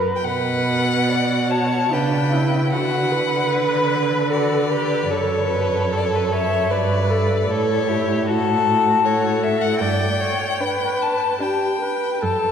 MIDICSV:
0, 0, Header, 1, 5, 480
1, 0, Start_track
1, 0, Key_signature, 2, "minor"
1, 0, Tempo, 859599
1, 128, Time_signature, 3, 2, 24, 8
1, 608, Tempo, 820793
1, 1568, Tempo, 794702
1, 4448, Tempo, 766284
1, 5888, Tempo, 810811
1, 7499, End_track
2, 0, Start_track
2, 0, Title_t, "Violin"
2, 0, Program_c, 0, 40
2, 88, Note_on_c, 0, 79, 62
2, 132, Note_on_c, 0, 78, 85
2, 141, Note_off_c, 0, 79, 0
2, 851, Note_on_c, 0, 81, 70
2, 860, Note_off_c, 0, 78, 0
2, 1096, Note_on_c, 0, 79, 60
2, 1105, Note_off_c, 0, 81, 0
2, 1559, Note_off_c, 0, 79, 0
2, 1563, Note_on_c, 0, 78, 74
2, 2041, Note_on_c, 0, 71, 76
2, 2051, Note_off_c, 0, 78, 0
2, 2525, Note_off_c, 0, 71, 0
2, 2531, Note_on_c, 0, 74, 67
2, 3002, Note_on_c, 0, 73, 65
2, 3011, Note_off_c, 0, 74, 0
2, 3527, Note_on_c, 0, 74, 65
2, 3536, Note_off_c, 0, 73, 0
2, 3577, Note_on_c, 0, 73, 64
2, 3586, Note_off_c, 0, 74, 0
2, 3633, Note_on_c, 0, 71, 62
2, 3642, Note_off_c, 0, 73, 0
2, 3689, Note_on_c, 0, 73, 53
2, 3698, Note_off_c, 0, 71, 0
2, 3739, Note_on_c, 0, 76, 75
2, 3748, Note_off_c, 0, 73, 0
2, 3974, Note_on_c, 0, 74, 63
2, 3983, Note_off_c, 0, 76, 0
2, 4452, Note_on_c, 0, 73, 70
2, 4461, Note_off_c, 0, 74, 0
2, 4929, Note_off_c, 0, 73, 0
2, 4940, Note_on_c, 0, 69, 82
2, 5420, Note_on_c, 0, 73, 68
2, 5430, Note_off_c, 0, 69, 0
2, 5659, Note_on_c, 0, 76, 68
2, 5669, Note_off_c, 0, 73, 0
2, 5769, Note_on_c, 0, 78, 77
2, 5779, Note_off_c, 0, 76, 0
2, 5884, Note_off_c, 0, 78, 0
2, 5888, Note_on_c, 0, 79, 78
2, 6609, Note_on_c, 0, 81, 70
2, 6618, Note_off_c, 0, 79, 0
2, 6847, Note_on_c, 0, 79, 66
2, 6856, Note_off_c, 0, 81, 0
2, 7326, Note_off_c, 0, 79, 0
2, 7329, Note_on_c, 0, 81, 81
2, 7499, Note_off_c, 0, 81, 0
2, 7499, End_track
3, 0, Start_track
3, 0, Title_t, "Viola"
3, 0, Program_c, 1, 41
3, 0, Note_on_c, 1, 71, 59
3, 128, Note_off_c, 1, 71, 0
3, 606, Note_on_c, 1, 66, 57
3, 1093, Note_on_c, 1, 62, 58
3, 1102, Note_off_c, 1, 66, 0
3, 1328, Note_on_c, 1, 64, 56
3, 1337, Note_off_c, 1, 62, 0
3, 1564, Note_on_c, 1, 66, 57
3, 1573, Note_off_c, 1, 64, 0
3, 1800, Note_on_c, 1, 71, 66
3, 1809, Note_off_c, 1, 66, 0
3, 2520, Note_on_c, 1, 69, 63
3, 2529, Note_off_c, 1, 71, 0
3, 2763, Note_on_c, 1, 71, 56
3, 2772, Note_off_c, 1, 69, 0
3, 3004, Note_on_c, 1, 69, 62
3, 3014, Note_off_c, 1, 71, 0
3, 3240, Note_off_c, 1, 69, 0
3, 3243, Note_on_c, 1, 71, 63
3, 3496, Note_on_c, 1, 69, 54
3, 3505, Note_off_c, 1, 71, 0
3, 3735, Note_on_c, 1, 73, 61
3, 3745, Note_off_c, 1, 69, 0
3, 3973, Note_on_c, 1, 71, 66
3, 3983, Note_off_c, 1, 73, 0
3, 4208, Note_on_c, 1, 69, 55
3, 4217, Note_off_c, 1, 71, 0
3, 4446, Note_off_c, 1, 69, 0
3, 4449, Note_on_c, 1, 69, 61
3, 4693, Note_on_c, 1, 64, 54
3, 4703, Note_off_c, 1, 69, 0
3, 4932, Note_on_c, 1, 66, 48
3, 4942, Note_off_c, 1, 64, 0
3, 5413, Note_off_c, 1, 66, 0
3, 5418, Note_on_c, 1, 69, 61
3, 5894, Note_on_c, 1, 74, 63
3, 5902, Note_off_c, 1, 69, 0
3, 6127, Note_on_c, 1, 73, 59
3, 6136, Note_off_c, 1, 74, 0
3, 6368, Note_on_c, 1, 71, 60
3, 6377, Note_off_c, 1, 73, 0
3, 6842, Note_off_c, 1, 71, 0
3, 6846, Note_on_c, 1, 67, 60
3, 7077, Note_off_c, 1, 67, 0
3, 7085, Note_on_c, 1, 71, 53
3, 7326, Note_on_c, 1, 69, 57
3, 7335, Note_off_c, 1, 71, 0
3, 7499, Note_off_c, 1, 69, 0
3, 7499, End_track
4, 0, Start_track
4, 0, Title_t, "Violin"
4, 0, Program_c, 2, 40
4, 138, Note_on_c, 2, 71, 55
4, 609, Note_on_c, 2, 74, 48
4, 617, Note_off_c, 2, 71, 0
4, 851, Note_off_c, 2, 74, 0
4, 855, Note_on_c, 2, 73, 58
4, 1099, Note_on_c, 2, 71, 52
4, 1108, Note_off_c, 2, 73, 0
4, 1562, Note_off_c, 2, 71, 0
4, 1566, Note_on_c, 2, 71, 58
4, 2524, Note_on_c, 2, 66, 52
4, 2533, Note_off_c, 2, 71, 0
4, 2761, Note_off_c, 2, 66, 0
4, 2764, Note_on_c, 2, 67, 60
4, 3004, Note_on_c, 2, 69, 53
4, 3013, Note_off_c, 2, 67, 0
4, 3979, Note_on_c, 2, 71, 54
4, 3988, Note_off_c, 2, 69, 0
4, 4449, Note_off_c, 2, 71, 0
4, 4453, Note_on_c, 2, 69, 56
4, 4686, Note_on_c, 2, 67, 57
4, 4695, Note_off_c, 2, 69, 0
4, 4927, Note_on_c, 2, 66, 48
4, 4936, Note_off_c, 2, 67, 0
4, 5410, Note_off_c, 2, 66, 0
4, 5422, Note_on_c, 2, 66, 56
4, 5885, Note_off_c, 2, 66, 0
4, 6366, Note_on_c, 2, 62, 45
4, 6723, Note_off_c, 2, 62, 0
4, 6840, Note_on_c, 2, 62, 51
4, 7202, Note_off_c, 2, 62, 0
4, 7499, End_track
5, 0, Start_track
5, 0, Title_t, "Cello"
5, 0, Program_c, 3, 42
5, 127, Note_on_c, 3, 47, 59
5, 1070, Note_off_c, 3, 47, 0
5, 1092, Note_on_c, 3, 49, 58
5, 1563, Note_on_c, 3, 50, 49
5, 1572, Note_off_c, 3, 49, 0
5, 2998, Note_off_c, 3, 50, 0
5, 3002, Note_on_c, 3, 42, 55
5, 3973, Note_on_c, 3, 43, 55
5, 3983, Note_off_c, 3, 42, 0
5, 4450, Note_off_c, 3, 43, 0
5, 4454, Note_on_c, 3, 45, 61
5, 5866, Note_off_c, 3, 45, 0
5, 5892, Note_on_c, 3, 43, 59
5, 6266, Note_off_c, 3, 43, 0
5, 7326, Note_on_c, 3, 42, 55
5, 7499, Note_off_c, 3, 42, 0
5, 7499, End_track
0, 0, End_of_file